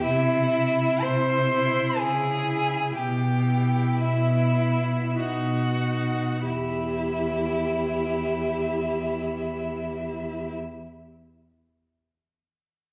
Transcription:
0.04 cello C3, violin E4 E5
0.52 viola E4
1.02 cello C3, violin C5 C6
1.51 viola E4
1.96 cello C#3, viola E4, violin G#4 G#5
2.47 viola E4
2.94 cello B2, violin G4 G5
3.46 viola E4
4.01 cello B2, violin E4 E5
4.59 viola E4
5.19 cello B2, viola D#4, violin F#4 F#5
5.83 viola D#4
6.46 cello E2, violin E4 E5, viola G4

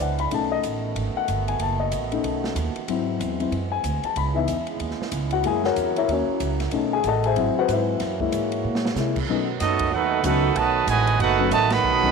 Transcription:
Already playing: trombone section G#3 B3 D4 E4
0.00 upright bass C#2, grand piano F#5
0.18 grand piano B5, ride
0.31 upright bass B1, trombone section D#3 A3 B3 F#4, grand piano A3 C#4 D#4 A5, ride
0.52 grand piano D#5
0.63 upright bass A1, hi-hat pedal, ride
0.96 upright bass G#1, ride
1.15 grand piano F#5, muted upright bass stroke
1.28 upright bass G1, hi-hat pedal, ride
1.48 grand piano G#5, ride
1.59 upright bass F#1, grand piano A5, ride
1.80 grand piano D#5
1.92 upright bass A1, hi-hat pedal, ride
2.11 grand piano A3 C#4 D#4, ride
2.23 upright bass B1, ride
2.44 snare
2.55 upright bass D#2, hi-hat pedal, ride
2.76 ride
2.86 upright bass G#2, trombone section E3 G#3 C4, grand piano F#3 C4, ride
2.90 grand piano E4
3.19 upright bass E2, hi-hat pedal, ride
3.40 grand piano F#3 C4 E4, ride
3.51 upright bass F#2, ride
3.72 grand piano G#5
3.84 upright bass D2, hi-hat pedal, ride
4.03 grand piano A5, muted upright bass stroke, ride
4.16 upright bass C#2, trombone section C#3 G#3 B3 E4, grand piano B5, ride
4.34 grand piano E3 B3 D#4 E5
4.48 upright bass E2, hi-hat pedal, ride
4.67 ride
4.80 upright bass D#2, ride
4.90 snare
5.02 snare
5.12 upright bass C#2, hi-hat pedal, ride
5.31 grand piano F#4 F#5, ride
5.44 upright bass F#2, trombone section F#3 A#3, grand piano G#3 A#3 E4 G#4 G#5, ride
5.64 grand piano F#4 A#4 C#5 F#5, snare
5.76 upright bass E2, hi-hat pedal, ride
5.96 grand piano E4 A#4 C#5 E5, ride
6.08 upright bass D#2, ride
6.12 grand piano C#4 F#4 A#4 C#5
6.28 muted upright bass stroke
6.40 upright bass C#2, hi-hat pedal, ride
6.60 snare, ride
6.71 upright bass B1, trombone section D#3 A3 B3 F#4, grand piano A3 C#4 D#4, ride
6.93 grand piano G#4 G#5
7.04 upright bass A1, grand piano A5, hi-hat pedal, ride
7.08 grand piano A4 D#5 F#5
7.24 grand piano G#4 C5 E5 G#5, ride
7.36 upright bass G#1, trombone section E3 G#3 C4, grand piano F#3 C4 E4, ride
7.59 grand piano F#4 B4 C5 F#5
7.68 upright bass G#2, hi-hat pedal, ride
7.72 grand piano E4 B4 C5 E5
8.00 upright bass F#2, trombone section A#3 F#4 C#5, snare, ride
8.20 grand piano G#3 A#3 E4, kick
8.32 upright bass G#2, hi-hat pedal, ride
8.52 ride
8.64 upright bass A#2
8.75 snare
8.85 snare
8.95 upright bass C3, grand piano G#3 A#3 E4, snare, hi-hat pedal
9.16 kick, crash
9.29 upright bass B2, trombone section D#3 F#3 B3 F#4, grand piano F#3 A3 B3 C#4 D#4
9.60 upright bass F#2, trombone section F#3 A3 D#4, trumpet section B3 F#4 A4 D#5, snare, hi-hat pedal, ride
9.79 kick, ride
9.92 upright bass D#2, trombone section A3 D#4 F#4, trumpet section D#4 A4 B4 F#5
10.23 upright bass C#2, grand piano F#3 A3 B3 C#4 F#4, trombone section A3 D#4 F#4, trumpet section D#4 A4 B4 F#5, hi-hat pedal, ride
10.55 upright bass B1, trombone section D#3 F#3 A3, trumpet section F#4 B4 D#5 A5, ride
10.87 upright bass A1, trombone section A2 D#3 G#3, trumpet section F#4 B4 D#5 G#5, hi-hat pedal, ride
11.07 ride
11.19 upright bass F#1, trombone section A3 D#4 F#4, trumpet section D#4 A4 B4 F#5, ride
11.39 grand piano F#3 A3 B3 C#4 D#4
11.51 upright bass A1, trombone section D#3 F#3 A3, trumpet section F#4 B4 D#5 A5, hi-hat pedal, ride
11.70 trombone section D#3 F#3 B3, trumpet section A4 D#5 F#5 B5, snare, ride
11.83 upright bass B1
12.03 grand piano F#3 A3 B3 C#4 D#4, kick

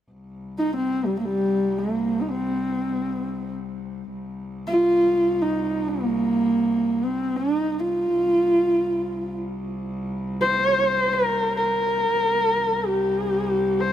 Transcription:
0.10 cello C2
0.58 horsehead fiddle D#4
0.76 horsehead fiddle C4
1.05 horsehead fiddle G3
1.19 horsehead fiddle A#3
1.25 horsehead fiddle G3
1.78 horsehead fiddle A#3
2.21 horsehead fiddle D#4
2.29 horsehead fiddle C4
4.12 cello C2
4.67 horsehead fiddle F4
5.42 horsehead fiddle D#4
5.88 horsehead fiddle A#3
7.04 horsehead fiddle C4
7.36 horsehead fiddle D#4
7.80 horsehead fiddle F4
8.12 cello C2
10.41 horsehead fiddle C5
11.13 horsehead fiddle A#4
11.56 horsehead fiddle A#4
12.12 cello C2
12.86 horsehead fiddle G4
13.81 horsehead fiddle C5

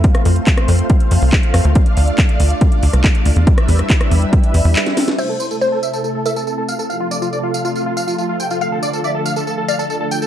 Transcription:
Already playing: analog synth pad A3
0.04 analog synth pad C4 F4 C5 F5, kick, closed hi-hat
0.15 cross-stick, closed hi-hat
0.25 analog synth bass F2, open hi-hat
0.36 closed hi-hat
0.47 kick, clap, closed hi-hat
0.58 cross-stick, closed hi-hat
0.68 analog synth bass F2, open hi-hat
0.79 closed hi-hat
0.90 kick, closed hi-hat
1.00 closed hi-hat
1.11 analog synth bass F2, open hi-hat
1.22 analog synth bass C2, open hi-hat
1.33 kick, clap
1.43 closed hi-hat
1.54 analog synth bass F2, cross-stick, open hi-hat
1.65 analog synth bass D2, closed hi-hat
1.75 analog synth pad D4 D5, kick, closed hi-hat
1.86 closed hi-hat
1.97 analog synth bass D2, open hi-hat
2.08 closed hi-hat
2.18 kick, clap, closed hi-hat
2.29 closed hi-hat
2.40 analog synth bass D2, open hi-hat
2.50 closed hi-hat
2.61 kick, closed hi-hat
2.72 closed hi-hat
2.83 analog synth bass D2, open hi-hat
2.93 analog synth bass C2, cross-stick, closed hi-hat
3.04 kick, clap, closed hi-hat
3.15 closed hi-hat
3.25 analog synth bass D2, open hi-hat
3.36 analog synth bass E2, closed hi-hat
3.47 analog synth pad G3 E4 B4 E5, kick, closed hi-hat
3.58 cross-stick, closed hi-hat
3.68 analog synth bass E2, open hi-hat
3.79 cross-stick, closed hi-hat
3.90 kick, clap, closed hi-hat
4.01 cross-stick, closed hi-hat
4.11 analog synth bass E2, open hi-hat
4.22 closed hi-hat
4.33 kick, closed hi-hat
4.44 closed hi-hat
4.54 analog synth bass E2, open hi-hat
4.65 analog synth bass E2, open hi-hat
4.76 clap, closed hi-hat
4.86 snare, closed hi-hat
4.97 snare, open hi-hat
5.08 snare, closed hi-hat
5.18 analog synth pad C3 A3 E4 A4, synth pluck C5, supersaw synth E5, crash, tambourine
5.29 supersaw synth A4
5.40 supersaw synth C5, tambourine
5.51 supersaw synth A4, tambourine
5.61 supersaw synth C5, synth pluck C5, tambourine
5.72 supersaw synth A4
5.83 supersaw synth E5, tambourine
5.93 supersaw synth A4, tambourine
6.04 supersaw synth A4, tambourine
6.15 supersaw synth A4
6.26 synth pluck A4, supersaw synth E5, tambourine
6.36 supersaw synth A4, tambourine
6.47 supersaw synth A4, tambourine
6.58 supersaw synth A4
6.68 supersaw synth F5, tambourine
6.79 supersaw synth A4, tambourine
6.90 analog synth pad F3 F4, supersaw synth F5, tambourine
7.00 supersaw synth F4
7.11 supersaw synth D5, tambourine
7.22 supersaw synth F4, tambourine
7.33 supersaw synth D5, tambourine
7.43 supersaw synth F4
7.54 supersaw synth F5, tambourine
7.65 supersaw synth F4, tambourine
7.75 supersaw synth F4, tambourine
7.86 supersaw synth F4
7.97 supersaw synth F5, tambourine
8.07 supersaw synth F4, tambourine
8.18 supersaw synth F4, tambourine
8.29 supersaw synth F4
8.40 supersaw synth G5, tambourine
8.50 supersaw synth F4, tambourine
8.61 analog synth pad D3, synth pluck F5, supersaw synth F5, tambourine
8.72 supersaw synth A4
8.83 supersaw synth D5, tambourine
8.93 supersaw synth A4, tambourine
9.04 supersaw synth D5, synth pluck E5, tambourine
9.15 supersaw synth A4
9.26 supersaw synth F5, tambourine
9.36 supersaw synth A4, tambourine
9.47 supersaw synth A4, tambourine
9.58 supersaw synth A4
9.68 synth pluck D5, supersaw synth F5, tambourine
9.79 supersaw synth A4, tambourine
9.90 supersaw synth A4, tambourine
10.00 supersaw synth A4
10.11 supersaw synth G5, tambourine
10.22 supersaw synth A4, tambourine

